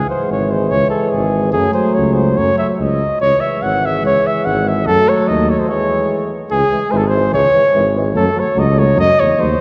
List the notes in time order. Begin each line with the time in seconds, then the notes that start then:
Already playing: E3 G#3
0.10 C5
0.30 G#1 C#5
0.51 C5
0.70 C#2 C#5
0.90 A4
1.10 G#1 G#4
1.53 F#2 F#3 A3 G#4
1.73 C5
1.94 C#2 C#5
2.14 C5
2.37 F#2 C#5
2.58 E5
2.79 C#2 D#5
3.21 C#2 E3 G#3 C#5
3.40 E5
3.62 G#1 F#5
3.86 E5
4.05 C#2 C#5
4.27 E5
4.45 G#1 F#5
4.68 E5
4.86 F#2 F#3 A3 A4
5.09 C#5
5.28 D#2 D#5
5.50 C#5
5.60 C5
5.69 E3 G#3 C#5
6.51 C#2 E3 G#3 G#4
6.71 E3 G#3
6.91 G#1 E3 G#3 C5
6.97 A4
7.08 C5
7.13 E3 G#3
7.32 C#2 E3 G#3 C#5
7.54 E3 G#3
7.74 G#1 E3 G#3
7.95 E3 G#3
8.15 F#2 F#3 A3 A4
8.34 F#3 A3
8.40 C#5
8.55 C#2 F#3 A3
8.59 D#5
8.76 F#3 A3 C#5
8.95 F#2 F#3 A3
8.99 D#5
9.17 E2 F#3 A3 C#5
9.37 D#2 F#3 A3 C5
9.57 F#3